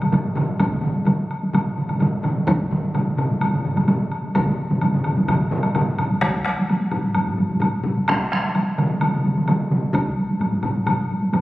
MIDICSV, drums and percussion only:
0, 0, Header, 1, 3, 480
1, 0, Start_track
1, 0, Tempo, 466926
1, 622, Time_signature, 4, 2, 24, 8
1, 11729, End_track
2, 0, Start_track
2, 0, Title_t, "Taiko and cinematic ensemble drums"
2, 8, Note_on_c, 9, 47, 66
2, 16, Note_on_c, 9, 45, 59
2, 18, Note_on_c, 9, 48, 51
2, 111, Note_off_c, 9, 47, 0
2, 119, Note_off_c, 9, 45, 0
2, 121, Note_off_c, 9, 48, 0
2, 125, Note_on_c, 9, 45, 91
2, 130, Note_on_c, 9, 47, 94
2, 136, Note_on_c, 9, 48, 63
2, 228, Note_off_c, 9, 45, 0
2, 233, Note_off_c, 9, 47, 0
2, 238, Note_off_c, 9, 48, 0
2, 364, Note_on_c, 9, 45, 96
2, 373, Note_on_c, 9, 47, 89
2, 467, Note_off_c, 9, 45, 0
2, 475, Note_off_c, 9, 47, 0
2, 507, Note_on_c, 9, 48, 47
2, 607, Note_on_c, 9, 45, 69
2, 609, Note_off_c, 9, 48, 0
2, 616, Note_on_c, 9, 41, 87
2, 616, Note_on_c, 9, 47, 63
2, 618, Note_on_c, 9, 48, 63
2, 710, Note_off_c, 9, 45, 0
2, 719, Note_off_c, 9, 41, 0
2, 719, Note_off_c, 9, 47, 0
2, 719, Note_on_c, 9, 45, 64
2, 721, Note_off_c, 9, 48, 0
2, 743, Note_on_c, 9, 47, 65
2, 822, Note_off_c, 9, 45, 0
2, 836, Note_on_c, 9, 45, 89
2, 846, Note_off_c, 9, 47, 0
2, 858, Note_on_c, 9, 47, 88
2, 872, Note_on_c, 9, 48, 42
2, 939, Note_off_c, 9, 45, 0
2, 961, Note_off_c, 9, 47, 0
2, 974, Note_off_c, 9, 48, 0
2, 984, Note_on_c, 9, 48, 50
2, 1082, Note_on_c, 9, 45, 93
2, 1087, Note_off_c, 9, 48, 0
2, 1099, Note_on_c, 9, 47, 90
2, 1105, Note_on_c, 9, 48, 66
2, 1185, Note_off_c, 9, 45, 0
2, 1201, Note_off_c, 9, 47, 0
2, 1208, Note_off_c, 9, 48, 0
2, 1469, Note_on_c, 9, 48, 55
2, 1572, Note_off_c, 9, 48, 0
2, 1578, Note_on_c, 9, 45, 89
2, 1587, Note_on_c, 9, 47, 88
2, 1589, Note_on_c, 9, 48, 67
2, 1680, Note_off_c, 9, 45, 0
2, 1690, Note_off_c, 9, 47, 0
2, 1692, Note_off_c, 9, 48, 0
2, 1826, Note_on_c, 9, 45, 62
2, 1828, Note_on_c, 9, 47, 66
2, 1928, Note_off_c, 9, 45, 0
2, 1931, Note_off_c, 9, 47, 0
2, 1938, Note_on_c, 9, 45, 66
2, 1954, Note_on_c, 9, 48, 59
2, 1958, Note_on_c, 9, 47, 62
2, 2041, Note_off_c, 9, 45, 0
2, 2054, Note_on_c, 9, 45, 91
2, 2056, Note_off_c, 9, 48, 0
2, 2061, Note_off_c, 9, 47, 0
2, 2075, Note_on_c, 9, 47, 90
2, 2077, Note_on_c, 9, 48, 77
2, 2157, Note_off_c, 9, 45, 0
2, 2178, Note_off_c, 9, 47, 0
2, 2180, Note_off_c, 9, 48, 0
2, 2294, Note_on_c, 9, 45, 92
2, 2311, Note_on_c, 9, 47, 92
2, 2396, Note_off_c, 9, 45, 0
2, 2414, Note_off_c, 9, 47, 0
2, 2442, Note_on_c, 9, 48, 56
2, 2543, Note_on_c, 9, 45, 91
2, 2545, Note_off_c, 9, 48, 0
2, 2550, Note_on_c, 9, 41, 108
2, 2556, Note_on_c, 9, 48, 77
2, 2559, Note_on_c, 9, 47, 87
2, 2645, Note_off_c, 9, 45, 0
2, 2653, Note_off_c, 9, 41, 0
2, 2659, Note_off_c, 9, 48, 0
2, 2662, Note_off_c, 9, 47, 0
2, 2788, Note_on_c, 9, 45, 92
2, 2798, Note_on_c, 9, 47, 97
2, 2800, Note_on_c, 9, 48, 52
2, 2891, Note_off_c, 9, 45, 0
2, 2900, Note_off_c, 9, 47, 0
2, 2903, Note_off_c, 9, 48, 0
2, 2914, Note_on_c, 9, 48, 56
2, 3017, Note_off_c, 9, 48, 0
2, 3025, Note_on_c, 9, 45, 95
2, 3033, Note_on_c, 9, 48, 78
2, 3035, Note_on_c, 9, 47, 93
2, 3127, Note_off_c, 9, 45, 0
2, 3136, Note_off_c, 9, 48, 0
2, 3138, Note_off_c, 9, 47, 0
2, 3273, Note_on_c, 9, 45, 97
2, 3276, Note_on_c, 9, 47, 98
2, 3376, Note_off_c, 9, 45, 0
2, 3379, Note_off_c, 9, 47, 0
2, 3393, Note_on_c, 9, 48, 58
2, 3496, Note_off_c, 9, 48, 0
2, 3501, Note_on_c, 9, 48, 73
2, 3511, Note_on_c, 9, 45, 60
2, 3517, Note_on_c, 9, 47, 70
2, 3604, Note_off_c, 9, 48, 0
2, 3614, Note_off_c, 9, 45, 0
2, 3620, Note_off_c, 9, 47, 0
2, 3632, Note_on_c, 9, 47, 65
2, 3641, Note_on_c, 9, 45, 65
2, 3735, Note_off_c, 9, 47, 0
2, 3743, Note_off_c, 9, 45, 0
2, 3750, Note_on_c, 9, 47, 66
2, 3765, Note_on_c, 9, 45, 68
2, 3853, Note_off_c, 9, 47, 0
2, 3868, Note_off_c, 9, 45, 0
2, 3868, Note_on_c, 9, 47, 70
2, 3870, Note_on_c, 9, 48, 57
2, 3878, Note_on_c, 9, 45, 68
2, 3971, Note_off_c, 9, 47, 0
2, 3973, Note_off_c, 9, 48, 0
2, 3981, Note_off_c, 9, 45, 0
2, 3986, Note_on_c, 9, 48, 73
2, 3991, Note_on_c, 9, 47, 91
2, 4005, Note_on_c, 9, 45, 92
2, 4089, Note_off_c, 9, 48, 0
2, 4093, Note_off_c, 9, 47, 0
2, 4108, Note_off_c, 9, 45, 0
2, 4356, Note_on_c, 9, 48, 52
2, 4458, Note_off_c, 9, 48, 0
2, 4469, Note_on_c, 9, 47, 68
2, 4471, Note_on_c, 9, 41, 101
2, 4479, Note_on_c, 9, 45, 68
2, 4479, Note_on_c, 9, 48, 67
2, 4571, Note_off_c, 9, 47, 0
2, 4574, Note_off_c, 9, 41, 0
2, 4582, Note_off_c, 9, 45, 0
2, 4582, Note_off_c, 9, 48, 0
2, 4592, Note_on_c, 9, 45, 67
2, 4597, Note_on_c, 9, 47, 67
2, 4695, Note_off_c, 9, 45, 0
2, 4700, Note_off_c, 9, 47, 0
2, 4713, Note_on_c, 9, 48, 46
2, 4816, Note_off_c, 9, 48, 0
2, 4835, Note_on_c, 9, 45, 73
2, 4838, Note_on_c, 9, 48, 52
2, 4842, Note_on_c, 9, 47, 68
2, 4938, Note_off_c, 9, 45, 0
2, 4941, Note_off_c, 9, 48, 0
2, 4945, Note_off_c, 9, 47, 0
2, 4956, Note_on_c, 9, 45, 71
2, 4957, Note_on_c, 9, 48, 67
2, 4968, Note_on_c, 9, 47, 65
2, 5059, Note_off_c, 9, 45, 0
2, 5059, Note_off_c, 9, 48, 0
2, 5070, Note_off_c, 9, 47, 0
2, 5076, Note_on_c, 9, 45, 67
2, 5083, Note_on_c, 9, 47, 74
2, 5179, Note_off_c, 9, 45, 0
2, 5186, Note_off_c, 9, 47, 0
2, 5197, Note_on_c, 9, 45, 69
2, 5205, Note_on_c, 9, 47, 69
2, 5300, Note_off_c, 9, 45, 0
2, 5308, Note_off_c, 9, 47, 0
2, 5314, Note_on_c, 9, 45, 67
2, 5316, Note_on_c, 9, 48, 56
2, 5332, Note_on_c, 9, 47, 66
2, 5417, Note_off_c, 9, 45, 0
2, 5419, Note_off_c, 9, 48, 0
2, 5427, Note_on_c, 9, 45, 94
2, 5431, Note_on_c, 9, 48, 64
2, 5433, Note_on_c, 9, 41, 67
2, 5435, Note_off_c, 9, 47, 0
2, 5438, Note_on_c, 9, 47, 97
2, 5530, Note_off_c, 9, 45, 0
2, 5533, Note_off_c, 9, 48, 0
2, 5536, Note_off_c, 9, 41, 0
2, 5541, Note_off_c, 9, 47, 0
2, 5668, Note_on_c, 9, 45, 95
2, 5676, Note_on_c, 9, 47, 102
2, 5771, Note_off_c, 9, 45, 0
2, 5779, Note_off_c, 9, 47, 0
2, 5785, Note_on_c, 9, 48, 51
2, 5888, Note_off_c, 9, 48, 0
2, 5914, Note_on_c, 9, 45, 94
2, 5917, Note_on_c, 9, 47, 96
2, 5918, Note_on_c, 9, 48, 65
2, 6017, Note_off_c, 9, 45, 0
2, 6019, Note_off_c, 9, 47, 0
2, 6021, Note_off_c, 9, 48, 0
2, 6159, Note_on_c, 9, 45, 74
2, 6159, Note_on_c, 9, 47, 65
2, 6262, Note_off_c, 9, 45, 0
2, 6262, Note_off_c, 9, 47, 0
2, 6278, Note_on_c, 9, 48, 49
2, 6381, Note_off_c, 9, 48, 0
2, 6386, Note_on_c, 9, 37, 69
2, 6397, Note_on_c, 9, 41, 91
2, 6402, Note_on_c, 9, 48, 68
2, 6489, Note_off_c, 9, 37, 0
2, 6500, Note_off_c, 9, 41, 0
2, 6505, Note_off_c, 9, 48, 0
2, 6626, Note_on_c, 9, 37, 69
2, 6646, Note_on_c, 9, 48, 47
2, 6729, Note_off_c, 9, 37, 0
2, 6749, Note_off_c, 9, 48, 0
2, 6769, Note_on_c, 9, 48, 49
2, 6872, Note_off_c, 9, 48, 0
2, 6889, Note_on_c, 9, 48, 64
2, 6992, Note_off_c, 9, 48, 0
2, 7108, Note_on_c, 9, 45, 92
2, 7116, Note_on_c, 9, 48, 52
2, 7211, Note_off_c, 9, 45, 0
2, 7219, Note_off_c, 9, 48, 0
2, 7236, Note_on_c, 9, 48, 49
2, 7338, Note_off_c, 9, 48, 0
2, 7351, Note_on_c, 9, 45, 61
2, 7356, Note_on_c, 9, 48, 63
2, 7454, Note_off_c, 9, 45, 0
2, 7459, Note_off_c, 9, 48, 0
2, 7473, Note_on_c, 9, 45, 66
2, 7576, Note_off_c, 9, 45, 0
2, 7586, Note_on_c, 9, 45, 62
2, 7599, Note_on_c, 9, 48, 48
2, 7689, Note_off_c, 9, 45, 0
2, 7701, Note_off_c, 9, 48, 0
2, 7703, Note_on_c, 9, 45, 62
2, 7722, Note_on_c, 9, 48, 52
2, 7806, Note_off_c, 9, 45, 0
2, 7814, Note_on_c, 9, 45, 92
2, 7825, Note_off_c, 9, 48, 0
2, 7845, Note_on_c, 9, 48, 63
2, 7917, Note_off_c, 9, 45, 0
2, 7948, Note_off_c, 9, 48, 0
2, 8054, Note_on_c, 9, 45, 94
2, 8087, Note_on_c, 9, 48, 49
2, 8157, Note_off_c, 9, 45, 0
2, 8190, Note_off_c, 9, 48, 0
2, 8198, Note_on_c, 9, 48, 49
2, 8301, Note_off_c, 9, 48, 0
2, 8314, Note_on_c, 9, 41, 85
2, 8316, Note_on_c, 9, 37, 65
2, 8316, Note_on_c, 9, 48, 60
2, 8417, Note_off_c, 9, 41, 0
2, 8418, Note_off_c, 9, 37, 0
2, 8419, Note_off_c, 9, 48, 0
2, 8556, Note_on_c, 9, 37, 70
2, 8565, Note_on_c, 9, 48, 47
2, 8659, Note_off_c, 9, 37, 0
2, 8667, Note_off_c, 9, 48, 0
2, 8684, Note_on_c, 9, 48, 51
2, 8786, Note_off_c, 9, 48, 0
2, 8795, Note_on_c, 9, 48, 63
2, 8898, Note_off_c, 9, 48, 0
2, 9026, Note_on_c, 9, 47, 95
2, 9035, Note_on_c, 9, 48, 52
2, 9129, Note_off_c, 9, 47, 0
2, 9138, Note_off_c, 9, 48, 0
2, 9154, Note_on_c, 9, 48, 45
2, 9257, Note_off_c, 9, 48, 0
2, 9272, Note_on_c, 9, 47, 67
2, 9275, Note_on_c, 9, 48, 59
2, 9374, Note_off_c, 9, 47, 0
2, 9378, Note_off_c, 9, 48, 0
2, 9395, Note_on_c, 9, 47, 64
2, 9498, Note_off_c, 9, 47, 0
2, 9508, Note_on_c, 9, 48, 45
2, 9512, Note_on_c, 9, 47, 64
2, 9611, Note_off_c, 9, 48, 0
2, 9615, Note_off_c, 9, 47, 0
2, 9638, Note_on_c, 9, 47, 64
2, 9639, Note_on_c, 9, 48, 49
2, 9741, Note_off_c, 9, 47, 0
2, 9742, Note_off_c, 9, 48, 0
2, 9748, Note_on_c, 9, 47, 90
2, 9756, Note_on_c, 9, 48, 57
2, 9851, Note_off_c, 9, 47, 0
2, 9859, Note_off_c, 9, 48, 0
2, 9986, Note_on_c, 9, 47, 85
2, 9993, Note_on_c, 9, 48, 45
2, 10089, Note_off_c, 9, 47, 0
2, 10096, Note_off_c, 9, 48, 0
2, 10109, Note_on_c, 9, 48, 41
2, 10211, Note_off_c, 9, 48, 0
2, 10215, Note_on_c, 9, 41, 92
2, 10227, Note_on_c, 9, 48, 54
2, 10318, Note_off_c, 9, 41, 0
2, 10329, Note_off_c, 9, 48, 0
2, 10465, Note_on_c, 9, 48, 46
2, 10568, Note_off_c, 9, 48, 0
2, 10585, Note_on_c, 9, 48, 45
2, 10684, Note_on_c, 9, 45, 69
2, 10688, Note_off_c, 9, 48, 0
2, 10699, Note_on_c, 9, 48, 59
2, 10787, Note_off_c, 9, 45, 0
2, 10802, Note_off_c, 9, 48, 0
2, 10808, Note_on_c, 9, 45, 63
2, 10911, Note_off_c, 9, 45, 0
2, 10926, Note_on_c, 9, 45, 92
2, 10946, Note_on_c, 9, 48, 48
2, 11029, Note_off_c, 9, 45, 0
2, 11049, Note_off_c, 9, 48, 0
2, 11068, Note_on_c, 9, 48, 48
2, 11168, Note_on_c, 9, 45, 89
2, 11171, Note_off_c, 9, 48, 0
2, 11188, Note_on_c, 9, 48, 59
2, 11270, Note_off_c, 9, 45, 0
2, 11291, Note_off_c, 9, 48, 0
2, 11422, Note_on_c, 9, 48, 45
2, 11525, Note_off_c, 9, 48, 0
2, 11538, Note_on_c, 9, 48, 50
2, 11641, Note_off_c, 9, 48, 0
2, 11657, Note_on_c, 9, 45, 91
2, 11657, Note_on_c, 9, 48, 64
2, 11729, Note_off_c, 9, 45, 0
2, 11729, Note_off_c, 9, 48, 0
2, 11729, End_track
3, 0, Start_track
3, 0, Title_t, "Drums"
3, 18, Note_on_c, 9, 76, 41
3, 121, Note_off_c, 9, 76, 0
3, 143, Note_on_c, 9, 76, 42
3, 246, Note_off_c, 9, 76, 0
3, 380, Note_on_c, 9, 76, 38
3, 483, Note_off_c, 9, 76, 0
3, 612, Note_on_c, 9, 76, 49
3, 715, Note_off_c, 9, 76, 0
3, 1095, Note_on_c, 9, 76, 40
3, 1198, Note_off_c, 9, 76, 0
3, 1344, Note_on_c, 9, 76, 41
3, 1447, Note_off_c, 9, 76, 0
3, 1589, Note_on_c, 9, 76, 51
3, 1691, Note_off_c, 9, 76, 0
3, 1945, Note_on_c, 9, 76, 39
3, 2047, Note_off_c, 9, 76, 0
3, 2061, Note_on_c, 9, 76, 41
3, 2163, Note_off_c, 9, 76, 0
3, 2302, Note_on_c, 9, 76, 41
3, 2404, Note_off_c, 9, 76, 0
3, 2544, Note_on_c, 9, 76, 54
3, 2647, Note_off_c, 9, 76, 0
3, 3030, Note_on_c, 9, 76, 44
3, 3132, Note_off_c, 9, 76, 0
3, 3273, Note_on_c, 9, 76, 39
3, 3376, Note_off_c, 9, 76, 0
3, 3509, Note_on_c, 9, 76, 52
3, 3612, Note_off_c, 9, 76, 0
3, 3876, Note_on_c, 9, 76, 39
3, 3979, Note_off_c, 9, 76, 0
3, 3988, Note_on_c, 9, 76, 42
3, 4091, Note_off_c, 9, 76, 0
3, 4231, Note_on_c, 9, 76, 40
3, 4334, Note_off_c, 9, 76, 0
3, 4472, Note_on_c, 9, 76, 52
3, 4575, Note_off_c, 9, 76, 0
3, 4949, Note_on_c, 9, 76, 45
3, 5052, Note_off_c, 9, 76, 0
3, 5184, Note_on_c, 9, 76, 44
3, 5286, Note_off_c, 9, 76, 0
3, 5433, Note_on_c, 9, 76, 57
3, 5536, Note_off_c, 9, 76, 0
3, 5788, Note_on_c, 9, 76, 47
3, 5890, Note_off_c, 9, 76, 0
3, 5909, Note_on_c, 9, 76, 49
3, 6012, Note_off_c, 9, 76, 0
3, 6153, Note_on_c, 9, 76, 47
3, 6256, Note_off_c, 9, 76, 0
3, 6392, Note_on_c, 9, 76, 50
3, 6495, Note_off_c, 9, 76, 0
3, 6882, Note_on_c, 9, 76, 41
3, 6984, Note_off_c, 9, 76, 0
3, 7108, Note_on_c, 9, 76, 38
3, 7211, Note_off_c, 9, 76, 0
3, 7345, Note_on_c, 9, 76, 50
3, 7448, Note_off_c, 9, 76, 0
3, 7830, Note_on_c, 9, 76, 47
3, 7933, Note_off_c, 9, 76, 0
3, 8305, Note_on_c, 9, 76, 60
3, 8407, Note_off_c, 9, 76, 0
3, 8789, Note_on_c, 9, 76, 42
3, 8892, Note_off_c, 9, 76, 0
3, 9030, Note_on_c, 9, 76, 38
3, 9133, Note_off_c, 9, 76, 0
3, 9263, Note_on_c, 9, 76, 51
3, 9366, Note_off_c, 9, 76, 0
3, 9742, Note_on_c, 9, 76, 41
3, 9845, Note_off_c, 9, 76, 0
3, 10226, Note_on_c, 9, 76, 48
3, 10329, Note_off_c, 9, 76, 0
3, 10702, Note_on_c, 9, 76, 36
3, 10804, Note_off_c, 9, 76, 0
3, 10926, Note_on_c, 9, 76, 35
3, 11028, Note_off_c, 9, 76, 0
3, 11172, Note_on_c, 9, 76, 46
3, 11275, Note_off_c, 9, 76, 0
3, 11652, Note_on_c, 9, 76, 40
3, 11729, Note_off_c, 9, 76, 0
3, 11729, End_track
0, 0, End_of_file